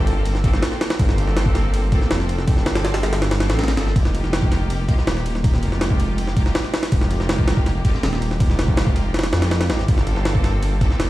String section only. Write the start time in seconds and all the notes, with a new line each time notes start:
Already playing: A#3 C4 F4 G4 A4
0.44 A#3 C4 F4 G4 A4
0.53 A#3 C4 F4 G4 A4
0.99 A#3 C4 F4 G4 A4
1.92 A#3 C4 F4 G4 A4
2.02 A#3 C4 F4 G4 A4
2.47 A#3 C4 F4 G4 A4
3.40 A#3 C4 F4 G4 A4
3.77 A#3 C4 F4 G4 A4
3.96 G#3 A#3 D#4 F4 G4
4.88 G#3 A#3 D#4 F4 G4
4.98 G#3 A#3 D#4 F4 G4
5.43 G#3 A#3 D#4 F4 G4
6.36 G#3 A#3 D#4 F4 G4
6.46 G#3 A#3 D#4 F4 G4
6.92 G#3 A#3 D#4 F4 G4
7.85 G#3 A#3 D#4 F4 G4
7.94 G#3 A#3 D#4 F4 G4
8.40 G#3 A#3 D#4 F4 G4
9.33 G#3 A#3 D#4 F4 G4
9.70 G#3 A#3 D#4 F4 G4
9.88 A#3 C4 F4 G4 A4
10.81 A#3 C4 F4 G4 A4
10.91 A#3 C4 F4 G4 A4